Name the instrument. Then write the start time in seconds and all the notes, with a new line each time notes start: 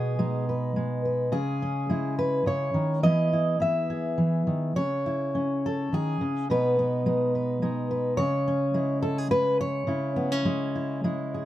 steel-string acoustic guitar
Already playing: B2 G#3 B3 G#4
0.19 G#3 D#4
0.49 B4
0.76 G#3
1.05 B4
1.32 C#3 G#4
1.62 C#4
1.89 G#3 E4
2.19 B4
2.46 C#3 C#5
2.74 D#3
3.03 E3 B3 E4 G#4 D#5
3.33 E4
3.60 B3 E5
3.90 G#4
4.18 E3
4.47 D#3
4.76 C#3 C#5
5.06 E4
5.35 C#4
5.66 A4
5.93 D#3 G#4
6.21 C#3
6.50 B2 G#3 B3 D#4 B4
6.79 B3
7.06 G#3 D#4
7.35 B4
7.62 G#3 D#4
7.91 B4
8.17 C#3 C#5
8.48 C#4
8.74 G#3 E4
9.02 A4
9.18 G#4
9.31 G#3 B4
9.61 C#5
9.87 C#3 E4
10.16 B3
10.32 C#4
10.45 G#3 E4
10.75 E4
11.04 G#3 E4
11.34 G#4